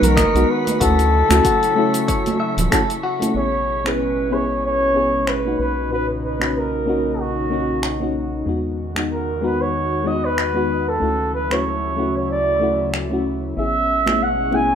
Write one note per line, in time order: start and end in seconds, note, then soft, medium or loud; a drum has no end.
0.00 0.25 B1 medium
0.00 0.79 D#3 medium
0.00 0.29 G#3 loud
0.00 0.79 G#3 medium
0.00 0.30 B3 medium
0.00 0.30 D#4 medium
0.00 0.31 F#4 loud
0.00 0.79 F#4 loud
0.00 3.38 C#6 medium
0.00 3.38 B6 medium
0.00 open hi-hat soft
0.00 low conga medium
0.04 0.51 A#4 loud
0.04 cabasa medium
0.17 0.46 D#5 loud
0.17 finger snap medium
0.17 kick loud
0.17 open hi-hat medium
0.17 high conga medium
0.17 cabasa medium
0.33 0.45 B1 medium
0.33 0.77 G#3 medium
0.33 0.77 B3 medium
0.33 0.78 D#4 medium
0.33 0.78 F#4 loud
0.33 open hi-hat soft
0.33 cabasa soft
0.50 0.83 B4 loud
0.67 open hi-hat soft
0.67 high conga medium
0.67 cabasa medium
0.80 1.23 D2 loud
0.80 3.34 C#3 medium
0.80 3.34 F#3 medium
0.80 1.26 A3 medium
0.80 1.26 C#4 medium
0.80 3.34 E4 medium
0.80 1.27 E4 medium
0.80 1.10 F#4 medium
0.80 1.27 F#4 medium
0.80 2.73 A4 loud
0.80 kick loud
0.80 open hi-hat medium
0.80 cabasa medium
0.99 open hi-hat soft
0.99 cabasa soft
1.29 1.41 D2 loud
1.29 1.72 A3 medium
1.29 1.73 C#4 medium
1.29 1.73 E4 medium
1.29 1.74 F#4 loud
1.29 finger snap medium
1.29 open hi-hat medium
1.29 high conga medium
1.29 cabasa medium
1.45 1.74 F#4 medium
1.45 kick medium
1.45 open hi-hat medium
1.45 cabasa medium
1.63 open hi-hat soft
1.63 cabasa soft
1.75 2.36 A3 loud
1.75 2.37 C#4 medium
1.75 2.37 E4 medium
1.75 2.38 F#4 loud
1.94 open hi-hat soft
1.94 cabasa medium
2.08 2.39 C#5 medium
2.08 kick loud
2.08 open hi-hat medium
2.08 cabasa soft
2.26 open hi-hat soft
2.26 high conga loud
2.26 cabasa soft
2.40 2.59 E5 loud
2.57 2.68 D1 medium
2.57 open hi-hat soft
2.57 low conga medium
2.57 cabasa medium
2.71 2.81 A3 medium
2.71 2.81 C#4 medium
2.71 2.82 E4 medium
2.71 2.82 F#4 loud
2.71 2.91 A4 loud
2.71 finger snap medium
2.71 kick loud
2.71 open hi-hat medium
2.71 high conga medium
2.71 cabasa medium
2.90 open hi-hat soft
2.90 cabasa soft
3.03 3.33 F#4 loud
3.20 3.32 A3 medium
3.20 3.32 C#4 medium
3.20 3.33 E4 medium
3.20 3.33 A4 medium
3.20 open hi-hat soft
3.20 high conga medium
3.20 cabasa medium
3.34 5.56 A1 medium
3.34 5.57 B2 medium
3.34 5.57 G#3 medium
3.34 3.81 B3 medium
3.34 3.81 C#4 medium
3.34 5.57 C#4 medium
3.34 3.81 E4 medium
3.34 3.82 G#4 medium
3.34 3.89 C#5 loud
3.84 4.28 B3 medium
3.84 4.28 C#4 medium
3.84 4.29 E4 medium
3.84 4.29 G#4 medium
3.84 4.35 B4 medium
3.84 finger snap medium
4.30 4.91 B3 medium
4.30 4.92 C#4 medium
4.30 4.92 E4 medium
4.30 4.93 G#4 medium
4.30 4.65 C#5 medium
4.66 5.30 C#5 loud
4.94 5.40 B3 medium
4.94 5.41 C#4 medium
4.94 5.41 E4 medium
4.94 5.42 G#4 medium
5.27 5.60 B4 medium
5.27 finger snap medium
5.45 5.88 A#3 medium
5.45 5.88 C#4 medium
5.45 5.89 D#4 medium
5.45 5.89 F#4 medium
5.59 8.44 B1 medium
5.59 8.44 A#2 medium
5.59 8.44 C#3 medium
5.59 8.44 D#4 medium
5.59 5.90 B4 medium
5.89 6.36 A#2 medium
5.89 6.37 C#4 medium
5.89 6.37 D#4 medium
5.89 6.37 F#4 medium
5.89 6.07 B4 medium
6.25 6.59 B4 medium
6.39 6.83 A#3 medium
6.39 6.83 C#4 medium
6.39 6.84 D#4 medium
6.39 6.84 F#4 medium
6.39 finger snap medium
6.57 7.22 A#4 medium
6.86 7.47 A#3 medium
6.86 7.48 C#4 medium
6.86 7.48 D#4 medium
6.86 7.49 F#4 medium
7.21 8.16 F#4 medium
7.50 7.96 A#3 medium
7.50 7.97 C#4 medium
7.50 7.97 D#4 medium
7.50 7.98 F#4 medium
7.83 finger snap medium
8.00 8.43 A#3 medium
8.00 8.44 C#4 medium
8.00 8.44 D#4 medium
8.00 8.45 F#4 medium
8.46 10.99 E2 medium
8.46 10.99 D#3 medium
8.46 8.92 G#3 medium
8.46 11.00 G#3 medium
8.46 8.92 B3 medium
8.46 8.93 D#4 medium
8.46 11.00 F#4 medium
8.46 8.93 F#4 medium
8.95 9.38 G#3 medium
8.95 9.39 B3 medium
8.95 9.39 D#4 medium
8.95 9.40 F#4 medium
8.95 finger snap medium
9.13 9.46 A#4 medium
9.41 10.02 G#3 medium
9.41 10.03 B3 medium
9.41 10.03 D#4 medium
9.41 10.04 F#4 medium
9.41 9.63 B4 medium
9.61 10.09 C#5 medium
10.04 10.50 G#3 medium
10.04 10.51 B3 medium
10.04 10.52 D#4 medium
10.04 10.52 F#4 medium
10.04 10.27 D#5 medium
10.25 10.90 B4 loud
10.38 finger snap medium
10.54 10.98 G#3 medium
10.54 10.98 B3 medium
10.54 10.99 D#4 medium
10.54 10.99 F#4 medium
10.89 11.34 A4 medium
11.00 13.54 D2 medium
11.00 13.55 C#3 medium
11.00 13.55 F#3 medium
11.00 11.46 A3 medium
11.00 11.47 C#4 medium
11.00 11.47 E4 medium
11.00 13.55 E4 medium
11.00 11.48 F#4 medium
11.34 11.54 B4 medium
11.50 11.94 A3 medium
11.50 11.94 C#4 medium
11.50 11.95 E4 medium
11.50 11.95 F#4 medium
11.50 12.16 C#5 medium
11.50 finger snap medium
11.96 12.58 A3 medium
11.96 12.58 C#4 medium
11.96 12.59 E4 medium
11.96 12.59 F#4 medium
12.17 12.29 C#5 medium
12.31 12.90 D5 medium
12.59 13.07 C#3 medium
12.59 13.06 A3 medium
12.59 13.07 E4 medium
12.59 13.08 F#4 medium
12.94 finger snap medium
13.10 13.53 A3 medium
13.10 13.54 C#4 medium
13.10 13.54 E4 medium
13.10 13.55 F#4 medium
13.57 14.75 A1 medium
13.57 14.75 B2 medium
13.57 14.75 G#3 medium
13.57 14.02 B3 medium
13.57 14.75 C#4 medium
13.57 14.03 C#4 medium
13.57 14.03 E4 medium
13.57 14.04 G#4 medium
13.57 14.25 E5 loud
14.06 14.49 B3 medium
14.06 14.49 C#4 medium
14.06 14.50 E4 medium
14.06 14.50 G#4 medium
14.06 finger snap medium
14.06 high conga medium
14.23 14.57 F#5 medium
14.51 14.75 B3 medium
14.51 14.75 C#4 medium
14.51 14.75 E4 medium
14.51 14.75 G#4 medium
14.51 high conga medium
14.55 14.75 G#5 loud